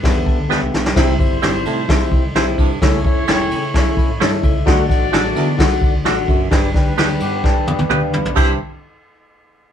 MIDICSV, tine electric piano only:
0, 0, Header, 1, 2, 480
1, 0, Start_track
1, 0, Key_signature, 0, "major"
1, 0, Tempo, 462606
1, 1002, Time_signature, 4, 2, 24, 8
1, 10091, End_track
2, 0, Start_track
2, 0, Title_t, "Tine electric piano"
2, 0, Program_c, 0, 4
2, 30, Note_on_c, 0, 59, 101
2, 34, Note_on_c, 0, 62, 93
2, 34, Note_on_c, 0, 67, 89
2, 34, Note_on_c, 0, 71, 84
2, 39, Note_on_c, 0, 76, 106
2, 273, Note_on_c, 0, 81, 77
2, 391, Note_off_c, 0, 59, 0
2, 392, Note_off_c, 0, 62, 0
2, 392, Note_off_c, 0, 67, 0
2, 393, Note_off_c, 0, 71, 0
2, 395, Note_off_c, 0, 76, 0
2, 500, Note_off_c, 0, 81, 0
2, 506, Note_on_c, 0, 59, 93
2, 510, Note_on_c, 0, 62, 79
2, 513, Note_on_c, 0, 79, 78
2, 514, Note_on_c, 0, 67, 78
2, 517, Note_on_c, 0, 71, 79
2, 519, Note_on_c, 0, 76, 96
2, 869, Note_off_c, 0, 59, 0
2, 871, Note_off_c, 0, 62, 0
2, 873, Note_off_c, 0, 67, 0
2, 874, Note_off_c, 0, 71, 0
2, 876, Note_off_c, 0, 76, 0
2, 964, Note_off_c, 0, 79, 0
2, 989, Note_on_c, 0, 60, 116
2, 993, Note_on_c, 0, 64, 101
2, 997, Note_on_c, 0, 67, 104
2, 1002, Note_on_c, 0, 72, 108
2, 1005, Note_on_c, 0, 76, 127
2, 1173, Note_off_c, 0, 60, 0
2, 1175, Note_off_c, 0, 64, 0
2, 1177, Note_off_c, 0, 67, 0
2, 1180, Note_off_c, 0, 72, 0
2, 1181, Note_off_c, 0, 76, 0
2, 1238, Note_on_c, 0, 60, 80
2, 1240, Note_on_c, 0, 64, 73
2, 1242, Note_on_c, 0, 67, 80
2, 1244, Note_on_c, 0, 72, 70
2, 1245, Note_on_c, 0, 76, 84
2, 1418, Note_off_c, 0, 60, 0
2, 1419, Note_off_c, 0, 64, 0
2, 1420, Note_off_c, 0, 67, 0
2, 1421, Note_off_c, 0, 72, 0
2, 1421, Note_off_c, 0, 76, 0
2, 1477, Note_on_c, 0, 60, 87
2, 1478, Note_on_c, 0, 64, 80
2, 1481, Note_on_c, 0, 67, 79
2, 1487, Note_on_c, 0, 72, 81
2, 1488, Note_on_c, 0, 74, 99
2, 1835, Note_off_c, 0, 60, 0
2, 1836, Note_off_c, 0, 64, 0
2, 1837, Note_off_c, 0, 67, 0
2, 1840, Note_off_c, 0, 72, 0
2, 1841, Note_off_c, 0, 74, 0
2, 1951, Note_on_c, 0, 64, 87
2, 1954, Note_on_c, 0, 60, 98
2, 1955, Note_on_c, 0, 67, 94
2, 1959, Note_on_c, 0, 72, 91
2, 1961, Note_on_c, 0, 76, 113
2, 2312, Note_off_c, 0, 64, 0
2, 2314, Note_off_c, 0, 60, 0
2, 2314, Note_off_c, 0, 67, 0
2, 2316, Note_off_c, 0, 72, 0
2, 2317, Note_off_c, 0, 76, 0
2, 2437, Note_on_c, 0, 60, 86
2, 2441, Note_on_c, 0, 64, 90
2, 2445, Note_on_c, 0, 67, 80
2, 2446, Note_on_c, 0, 72, 83
2, 2453, Note_on_c, 0, 76, 97
2, 2796, Note_off_c, 0, 60, 0
2, 2797, Note_off_c, 0, 64, 0
2, 2799, Note_off_c, 0, 67, 0
2, 2800, Note_off_c, 0, 72, 0
2, 2804, Note_off_c, 0, 76, 0
2, 2922, Note_on_c, 0, 61, 112
2, 2927, Note_on_c, 0, 64, 109
2, 2927, Note_on_c, 0, 69, 109
2, 2930, Note_on_c, 0, 73, 103
2, 2936, Note_on_c, 0, 76, 126
2, 3101, Note_off_c, 0, 61, 0
2, 3103, Note_off_c, 0, 64, 0
2, 3103, Note_off_c, 0, 69, 0
2, 3105, Note_off_c, 0, 73, 0
2, 3108, Note_off_c, 0, 76, 0
2, 3162, Note_on_c, 0, 61, 87
2, 3170, Note_on_c, 0, 69, 78
2, 3171, Note_on_c, 0, 64, 72
2, 3175, Note_on_c, 0, 73, 76
2, 3177, Note_on_c, 0, 76, 99
2, 3341, Note_off_c, 0, 61, 0
2, 3344, Note_off_c, 0, 69, 0
2, 3345, Note_off_c, 0, 64, 0
2, 3347, Note_off_c, 0, 73, 0
2, 3348, Note_off_c, 0, 76, 0
2, 3408, Note_on_c, 0, 61, 94
2, 3414, Note_on_c, 0, 73, 82
2, 3415, Note_on_c, 0, 64, 88
2, 3416, Note_on_c, 0, 69, 90
2, 3420, Note_on_c, 0, 79, 105
2, 3761, Note_off_c, 0, 61, 0
2, 3764, Note_off_c, 0, 73, 0
2, 3765, Note_off_c, 0, 64, 0
2, 3765, Note_off_c, 0, 69, 0
2, 3767, Note_off_c, 0, 79, 0
2, 3883, Note_on_c, 0, 61, 107
2, 3884, Note_on_c, 0, 64, 88
2, 3889, Note_on_c, 0, 69, 87
2, 3891, Note_on_c, 0, 73, 93
2, 3894, Note_on_c, 0, 74, 93
2, 3947, Note_off_c, 0, 74, 0
2, 3953, Note_on_c, 0, 76, 117
2, 4122, Note_on_c, 0, 83, 72
2, 4238, Note_off_c, 0, 61, 0
2, 4239, Note_off_c, 0, 64, 0
2, 4242, Note_off_c, 0, 69, 0
2, 4242, Note_off_c, 0, 73, 0
2, 4273, Note_off_c, 0, 76, 0
2, 4346, Note_off_c, 0, 83, 0
2, 4365, Note_on_c, 0, 61, 83
2, 4370, Note_on_c, 0, 64, 92
2, 4370, Note_on_c, 0, 69, 87
2, 4375, Note_on_c, 0, 81, 83
2, 4376, Note_on_c, 0, 73, 87
2, 4378, Note_on_c, 0, 76, 101
2, 4593, Note_off_c, 0, 81, 0
2, 4598, Note_off_c, 0, 76, 0
2, 4610, Note_on_c, 0, 76, 83
2, 4719, Note_off_c, 0, 61, 0
2, 4721, Note_off_c, 0, 64, 0
2, 4722, Note_off_c, 0, 69, 0
2, 4724, Note_off_c, 0, 73, 0
2, 4830, Note_off_c, 0, 76, 0
2, 4832, Note_on_c, 0, 62, 125
2, 4834, Note_on_c, 0, 66, 113
2, 4843, Note_on_c, 0, 74, 114
2, 4844, Note_on_c, 0, 69, 119
2, 4850, Note_on_c, 0, 78, 123
2, 5015, Note_off_c, 0, 62, 0
2, 5016, Note_off_c, 0, 66, 0
2, 5021, Note_off_c, 0, 69, 0
2, 5021, Note_off_c, 0, 74, 0
2, 5024, Note_off_c, 0, 78, 0
2, 5071, Note_on_c, 0, 62, 83
2, 5077, Note_on_c, 0, 66, 80
2, 5078, Note_on_c, 0, 69, 73
2, 5082, Note_on_c, 0, 78, 93
2, 5084, Note_on_c, 0, 74, 81
2, 5254, Note_off_c, 0, 62, 0
2, 5257, Note_off_c, 0, 66, 0
2, 5258, Note_off_c, 0, 69, 0
2, 5260, Note_off_c, 0, 78, 0
2, 5261, Note_off_c, 0, 74, 0
2, 5309, Note_on_c, 0, 62, 90
2, 5312, Note_on_c, 0, 66, 87
2, 5314, Note_on_c, 0, 69, 84
2, 5319, Note_on_c, 0, 74, 82
2, 5324, Note_on_c, 0, 80, 81
2, 5380, Note_on_c, 0, 81, 107
2, 5381, Note_off_c, 0, 80, 0
2, 5670, Note_off_c, 0, 62, 0
2, 5672, Note_off_c, 0, 66, 0
2, 5673, Note_off_c, 0, 69, 0
2, 5675, Note_off_c, 0, 74, 0
2, 5705, Note_off_c, 0, 81, 0
2, 5785, Note_on_c, 0, 62, 101
2, 5790, Note_on_c, 0, 66, 89
2, 5791, Note_on_c, 0, 69, 96
2, 5793, Note_on_c, 0, 74, 95
2, 5797, Note_on_c, 0, 78, 109
2, 6148, Note_off_c, 0, 62, 0
2, 6150, Note_off_c, 0, 66, 0
2, 6151, Note_off_c, 0, 69, 0
2, 6152, Note_off_c, 0, 74, 0
2, 6154, Note_off_c, 0, 78, 0
2, 6271, Note_on_c, 0, 62, 92
2, 6276, Note_on_c, 0, 66, 88
2, 6281, Note_on_c, 0, 69, 85
2, 6283, Note_on_c, 0, 74, 85
2, 6283, Note_on_c, 0, 78, 105
2, 6630, Note_off_c, 0, 62, 0
2, 6633, Note_off_c, 0, 66, 0
2, 6635, Note_off_c, 0, 69, 0
2, 6636, Note_off_c, 0, 74, 0
2, 6636, Note_off_c, 0, 78, 0
2, 6753, Note_on_c, 0, 62, 110
2, 6753, Note_on_c, 0, 67, 102
2, 6759, Note_on_c, 0, 71, 102
2, 6759, Note_on_c, 0, 79, 124
2, 6760, Note_on_c, 0, 74, 114
2, 6934, Note_off_c, 0, 62, 0
2, 6934, Note_off_c, 0, 67, 0
2, 6937, Note_off_c, 0, 71, 0
2, 6937, Note_off_c, 0, 74, 0
2, 6937, Note_off_c, 0, 79, 0
2, 6996, Note_on_c, 0, 62, 87
2, 7002, Note_on_c, 0, 67, 79
2, 7007, Note_on_c, 0, 71, 80
2, 7008, Note_on_c, 0, 74, 76
2, 7014, Note_on_c, 0, 79, 97
2, 7175, Note_off_c, 0, 62, 0
2, 7178, Note_off_c, 0, 67, 0
2, 7180, Note_off_c, 0, 71, 0
2, 7181, Note_off_c, 0, 74, 0
2, 7184, Note_off_c, 0, 79, 0
2, 7236, Note_on_c, 0, 62, 98
2, 7243, Note_on_c, 0, 67, 81
2, 7243, Note_on_c, 0, 74, 86
2, 7244, Note_on_c, 0, 71, 77
2, 7251, Note_on_c, 0, 79, 98
2, 7592, Note_off_c, 0, 62, 0
2, 7595, Note_off_c, 0, 67, 0
2, 7596, Note_off_c, 0, 71, 0
2, 7596, Note_off_c, 0, 74, 0
2, 7599, Note_off_c, 0, 79, 0
2, 7720, Note_on_c, 0, 62, 92
2, 7722, Note_on_c, 0, 71, 88
2, 7724, Note_on_c, 0, 67, 90
2, 7729, Note_on_c, 0, 74, 90
2, 7730, Note_on_c, 0, 79, 110
2, 8074, Note_off_c, 0, 62, 0
2, 8074, Note_off_c, 0, 71, 0
2, 8075, Note_off_c, 0, 67, 0
2, 8078, Note_off_c, 0, 74, 0
2, 8079, Note_off_c, 0, 79, 0
2, 8198, Note_on_c, 0, 62, 92
2, 8199, Note_on_c, 0, 67, 80
2, 8201, Note_on_c, 0, 79, 76
2, 8204, Note_on_c, 0, 69, 70
2, 8207, Note_on_c, 0, 74, 80
2, 8207, Note_on_c, 0, 77, 96
2, 8258, Note_off_c, 0, 69, 0
2, 8258, Note_on_c, 0, 71, 77
2, 8422, Note_off_c, 0, 79, 0
2, 8436, Note_on_c, 0, 83, 80
2, 8552, Note_off_c, 0, 62, 0
2, 8553, Note_off_c, 0, 67, 0
2, 8557, Note_off_c, 0, 74, 0
2, 8557, Note_off_c, 0, 77, 0
2, 8582, Note_off_c, 0, 71, 0
2, 8660, Note_off_c, 0, 83, 0
2, 8673, Note_on_c, 0, 67, 86
2, 8674, Note_on_c, 0, 76, 77
2, 8674, Note_on_c, 0, 79, 90
2, 8677, Note_on_c, 0, 72, 73
2, 8898, Note_off_c, 0, 67, 0
2, 8898, Note_off_c, 0, 76, 0
2, 8898, Note_off_c, 0, 79, 0
2, 8900, Note_off_c, 0, 72, 0
2, 10091, End_track
0, 0, End_of_file